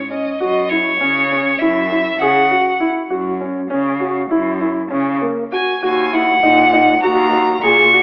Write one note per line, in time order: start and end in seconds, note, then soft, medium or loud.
0.00 0.24 G#2 medium
0.10 0.29 C#4 medium
0.10 0.38 D#5 medium
0.40 0.90 F#2 medium
0.40 0.59 F#4 medium
0.40 0.71 D#5 medium
0.69 0.90 E4 medium
0.69 1.60 C#5 medium
1.00 1.50 C#3 medium
1.00 1.19 C#4 medium
1.32 1.50 C#4 medium
1.58 2.10 F#2 medium
1.58 1.80 E4 medium
1.58 2.21 E5 medium
1.92 2.10 E4 medium
2.19 2.45 C#3 medium
2.19 2.40 G#4 medium
2.19 2.88 F#5 medium
2.51 2.70 F#4 medium
2.80 2.99 E4 medium
3.10 3.60 F#2 medium
3.10 3.29 F#4 medium
3.41 3.60 C#4 medium
3.70 4.21 C#3 medium
3.70 3.89 C#4 medium
4.00 4.19 F#4 medium
4.31 4.81 F#2 loud
4.31 4.50 E4 medium
4.61 4.80 E4 medium
4.90 5.17 C#3 medium
4.90 5.10 C#4 medium
5.22 5.41 A#3 medium
5.52 5.71 F#4 medium
5.52 5.80 G#5 medium
5.82 6.32 D#2 medium
5.82 6.01 F#4 medium
5.82 6.14 G#5 medium
6.13 6.32 E4 medium
6.13 7.01 F#5 medium
6.42 6.92 A#2 medium
6.42 6.62 D#4 medium
6.73 6.92 D#4 medium
7.02 7.52 D#2 loud
7.02 7.22 F#4 medium
7.02 7.59 A#5 loud
7.33 7.52 F#4 medium
7.63 7.88 A#2 medium
7.63 7.82 G#4 medium
7.63 8.03 C#6 medium
7.94 8.03 F#4 medium